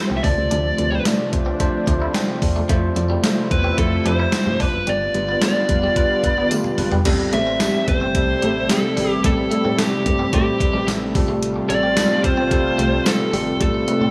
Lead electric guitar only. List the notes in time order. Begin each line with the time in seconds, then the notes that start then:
0.17 E5
0.24 D5
3.52 B4
3.79 A4
4.07 C5
4.62 B4
4.89 D5
5.44 D5
7.34 E5
7.89 C5
8.71 A4
9.25 A4
9.80 G4
10.35 G4
11.70 D5
12.25 C5
13.07 A4
13.62 A4